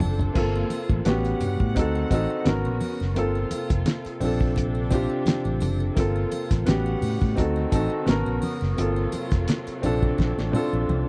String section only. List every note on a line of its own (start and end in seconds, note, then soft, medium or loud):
0.00 1.02 C3 medium
0.00 0.32 F#3 medium
0.00 0.34 D4 medium
0.00 1.03 A4 medium
0.35 1.05 A#3 medium
0.35 1.05 F4 medium
1.06 1.76 C#3 medium
1.06 1.76 G3 medium
1.06 1.76 B3 medium
1.06 2.45 F#5 medium
1.76 2.46 D3 medium
1.76 2.46 D#3 medium
1.76 2.46 C4 medium
2.46 3.16 C#3 medium
2.46 3.16 B3 medium
2.46 3.16 F#4 medium
3.16 6.64 C3 medium
3.16 4.21 F4 medium
3.16 6.64 A4 medium
4.22 5.95 D4 medium
5.97 6.67 F4 medium
6.68 7.37 C#3 medium
6.68 7.37 G3 medium
6.68 7.37 B3 medium
6.68 7.37 F#5 medium
7.39 8.08 D3 medium
7.39 8.08 D#3 medium
7.39 8.08 C4 medium
7.39 8.77 F#4 medium
8.08 8.78 C#3 medium
8.08 11.09 F#3 medium
8.08 8.77 B3 medium
8.79 11.09 C3 medium
8.79 9.83 F4 medium
8.79 11.09 A4 medium
9.84 11.09 D4 medium